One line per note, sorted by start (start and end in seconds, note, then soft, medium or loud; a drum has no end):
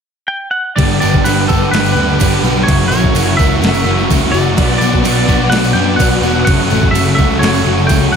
0.28 0.51 G5 medium
0.51 0.75 F#5 loud
0.76 0.99 G1 medium
0.76 1.22 G2 medium
0.76 1.23 D3 medium
0.76 1.02 G3 medium
0.76 1.02 B3 loud
0.76 1.01 D4 loud
0.76 0.99 G4 loud
0.76 2.66 B4 medium
0.76 0.99 D5 medium
0.76 2.66 F#5 medium
0.76 2.66 G5 medium
0.76 2.67 D6 medium
0.76 kick loud
0.76 tambourine soft
0.76 crash medium
1.00 1.23 G1 medium
1.00 1.23 G2 medium
1.00 1.24 D3 medium
1.00 1.24 G3 medium
1.00 1.25 B3 medium
1.00 1.26 D4 medium
1.00 1.26 G4 medium
1.00 1.23 D5 medium
1.00 tambourine medium
1.14 kick medium
1.14 tambourine soft
1.24 1.46 G1 medium
1.24 1.70 G2 medium
1.24 1.71 D3 medium
1.24 1.49 G3 medium
1.24 1.49 B3 medium
1.24 1.48 D4 medium
1.24 1.46 G4 loud
1.24 1.48 B4 medium
1.24 tambourine medium
1.24 crash medium
1.47 1.70 G1 medium
1.47 1.71 G2 medium
1.47 1.71 D3 medium
1.47 1.72 G3 medium
1.47 1.72 B3 medium
1.47 1.72 D4 medium
1.47 1.73 G4 medium
1.47 1.71 A4 medium
1.47 kick medium
1.47 tambourine medium
1.71 1.93 G1 loud
1.71 2.20 G2 medium
1.71 2.20 D3 medium
1.71 1.97 G3 medium
1.71 1.97 B3 loud
1.71 1.96 D4 medium
1.71 1.95 G4 loud
1.71 1.91 B4 medium
1.71 snare loud
1.71 crash medium
1.84 tambourine medium
1.92 2.16 D2 medium
1.92 2.21 G4 medium
1.92 2.68 B4 medium
1.97 2.20 G2 medium
1.97 2.20 D3 medium
1.97 2.19 G3 medium
1.97 2.20 B3 medium
1.97 2.21 D4 medium
2.09 tambourine soft
2.20 2.41 G1 medium
2.20 2.43 G2 loud
2.20 2.44 D3 loud
2.20 2.45 G3 medium
2.20 2.44 B3 medium
2.20 2.44 D4 medium
2.20 2.42 G4 medium
2.20 kick medium
2.20 tambourine medium
2.20 crash medium
2.33 tambourine soft
2.43 2.64 B1 medium
2.43 2.67 G2 medium
2.43 2.67 D3 loud
2.43 2.67 G3 medium
2.43 2.67 B3 medium
2.43 2.67 D4 medium
2.43 2.71 F#4 medium
2.43 2.66 G4 medium
2.43 tambourine medium
2.56 tambourine soft
2.63 3.14 F#2 medium
2.63 2.87 C#5 medium
2.68 2.88 F#1 medium
2.68 3.14 C#3 loud
2.68 2.92 E3 loud
2.68 2.92 F#3 loud
2.68 2.91 A#3 loud
2.68 2.90 E4 loud
2.68 2.90 F#4 loud
2.68 4.56 A#4 medium
2.68 4.56 E5 medium
2.68 4.55 F#5 medium
2.68 4.56 C#6 medium
2.68 kick loud
2.68 tambourine soft
2.68 crash medium
2.88 3.11 A#1 medium
2.88 3.16 E4 medium
2.88 3.18 F#4 medium
2.88 3.37 C#5 medium
2.88 tambourine medium
2.93 3.14 F#2 medium
2.93 3.15 C#3 medium
2.93 3.15 E3 medium
2.93 3.16 F#3 loud
2.93 3.16 A#3 medium
3.04 kick medium
3.14 3.35 F#1 medium
3.14 3.60 F#2 medium
3.14 3.61 C#3 medium
3.14 3.41 E3 medium
3.14 3.39 F#3 loud
3.14 3.40 A#3 medium
3.14 3.39 E4 medium
3.14 tambourine medium
3.14 crash medium
3.18 3.38 F#4 medium
3.37 3.60 C#2 loud
3.37 3.60 F#2 medium
3.37 3.61 C#3 medium
3.37 3.62 F#3 medium
3.37 3.63 E4 medium
3.37 3.64 F#4 medium
3.37 4.05 E5 medium
3.37 kick medium
3.37 tambourine medium
3.41 3.62 E3 medium
3.41 3.62 A#3 medium
3.62 3.83 F#1 loud
3.62 4.10 F#2 loud
3.62 4.10 C#3 medium
3.62 3.87 E3 loud
3.62 3.85 F#3 loud
3.62 3.86 A#3 loud
3.62 3.85 E4 loud
3.62 3.85 F#4 loud
3.62 snare loud
3.62 crash soft
3.74 tambourine medium
3.85 4.06 F#1 medium
3.85 4.08 F#2 medium
3.85 4.08 C#3 medium
3.85 4.06 E3 medium
3.85 4.09 F#3 loud
3.85 4.08 A#3 medium
3.85 4.08 E4 medium
3.85 4.10 F#4 medium
3.98 snare soft
3.98 tambourine soft
4.07 4.31 C#2 medium
4.07 4.31 F#2 medium
4.07 4.31 C#3 loud
4.07 4.34 E3 medium
4.07 4.32 F#3 loud
4.07 4.33 A#3 medium
4.07 4.58 C#4 medium
4.07 4.32 E4 medium
4.07 4.32 F#4 medium
4.07 kick medium
4.07 tambourine loud
4.11 crash medium
4.32 4.54 F#1 medium
4.32 4.55 F#2 medium
4.32 4.56 C#3 medium
4.32 4.57 E3 medium
4.32 4.56 F#3 medium
4.32 4.56 A#3 medium
4.32 4.56 E4 medium
4.32 4.58 F#4 medium
4.32 4.77 D5 medium
4.32 tambourine medium
4.46 tambourine soft
4.56 4.78 B1 medium
4.56 5.02 B2 loud
4.56 5.04 F#3 loud
4.56 4.82 B3 loud
4.56 4.80 D4 loud
4.56 4.80 F#4 loud
4.56 6.46 B4 medium
4.56 6.45 D5 medium
4.56 6.45 F#5 medium
4.56 6.46 D6 medium
4.56 kick loud
4.56 tambourine soft
4.56 crash medium
4.78 5.01 B1 medium
4.78 5.02 B2 medium
4.78 5.04 F#3 loud
4.78 5.04 D4 medium
4.78 5.06 F#4 medium
4.78 5.49 D5 loud
4.78 tambourine medium
4.83 5.03 B3 medium
4.93 kick medium
4.93 tambourine soft
5.03 5.25 B1 medium
5.03 5.50 B2 medium
5.03 5.52 F#3 medium
5.03 5.28 B3 medium
5.03 5.27 D4 medium
5.03 5.27 F#4 medium
5.03 tambourine medium
5.03 crash medium
5.27 5.49 B1 medium
5.27 5.49 B2 medium
5.27 5.51 F#3 medium
5.27 5.52 B3 medium
5.27 5.53 D4 medium
5.27 5.54 F#4 medium
5.27 kick medium
5.27 tambourine medium
5.50 5.72 B1 loud
5.50 6.00 B2 medium
5.50 5.99 F#3 loud
5.50 5.76 B3 loud
5.50 5.73 F#5 loud
5.50 snare loud
5.50 tambourine soft
5.50 crash medium
5.54 5.75 D4 loud
5.54 5.75 F#4 loud
5.64 tambourine medium
5.73 5.96 F#2 medium
5.73 5.99 B2 medium
5.73 6.00 F#3 medium
5.73 5.99 B3 loud
5.73 6.00 D4 medium
5.73 6.02 F#4 medium
5.73 5.96 G5 loud
5.78 5.99 B3 medium
5.96 6.20 B1 medium
5.96 6.21 B2 medium
5.96 6.47 F#3 medium
5.96 6.24 B3 medium
5.96 6.44 F#5 loud
5.96 kick medium
5.96 tambourine medium
5.96 crash medium
6.01 6.23 D4 medium
6.01 6.22 F#4 medium
6.12 tambourine soft
6.22 6.43 E1 medium
6.22 6.46 B2 medium
6.22 6.47 F#3 medium
6.22 6.47 B3 medium
6.22 6.47 D4 medium
6.22 6.48 F#4 medium
6.22 tambourine medium
6.45 6.67 F#1 medium
6.45 6.92 F#2 medium
6.45 6.92 C#3 loud
6.45 6.94 E3 medium
6.45 6.72 F#3 loud
6.45 6.70 A3 loud
6.45 6.70 C#4 loud
6.45 6.69 F#4 loud
6.45 8.16 A4 medium
6.45 8.16 E5 medium
6.45 6.91 F#5 medium
6.45 8.16 F#5 medium
6.45 8.16 C#6 medium
6.45 kick loud
6.45 crash medium
6.59 tambourine soft
6.69 6.91 A1 medium
6.69 6.93 F#2 medium
6.69 6.93 C#3 medium
6.69 6.94 F#3 medium
6.69 6.94 A3 medium
6.69 6.94 C#4 medium
6.69 6.95 F#4 medium
6.69 tambourine medium
6.82 kick medium
6.82 tambourine soft
6.91 7.15 F#1 medium
6.91 7.40 F#2 medium
6.91 7.41 C#3 medium
6.91 7.19 F#3 medium
6.91 7.17 A3 loud
6.91 7.17 C#4 medium
6.91 7.14 E5 medium
6.91 tambourine medium
6.95 8.14 E3 medium
6.95 7.16 F#4 loud
6.95 crash medium
7.07 tambourine soft
7.15 7.40 F#2 medium
7.15 7.41 C#3 medium
7.15 7.42 A3 medium
7.15 7.42 C#4 medium
7.15 7.43 F#4 medium
7.15 7.42 E5 medium
7.15 tambourine medium
7.19 7.39 C#2 medium
7.19 7.42 F#3 medium
7.19 kick medium
7.30 tambourine soft
7.39 7.62 F#1 medium
7.39 7.90 F#2 medium
7.39 7.90 C#3 loud
7.39 7.68 F#3 medium
7.39 7.66 A3 medium
7.39 7.65 C#4 loud
7.39 7.85 C#5 loud
7.39 tambourine soft
7.39 crash medium
7.44 7.65 F#4 loud
7.44 snare loud
7.54 tambourine medium
7.65 7.86 F#1 medium
7.65 7.88 F#2 medium
7.65 7.89 C#3 medium
7.65 7.88 F#3 medium
7.65 7.88 A3 medium
7.65 7.89 C#4 medium
7.65 7.91 F#4 medium
7.65 tambourine soft
7.78 snare soft
7.78 tambourine soft
7.87 8.11 C#2 medium
7.87 8.14 F#2 medium
7.87 8.14 C#3 medium
7.87 8.15 F#3 medium
7.87 8.13 A3 medium
7.87 8.12 C#4 medium
7.87 8.12 G5 medium
7.87 kick medium
7.87 tambourine medium
7.87 crash soft
7.91 8.12 F#4 medium
8.02 tambourine soft
8.12 8.16 C#4 medium
8.12 8.16 F#4 medium
8.12 8.16 F#5 medium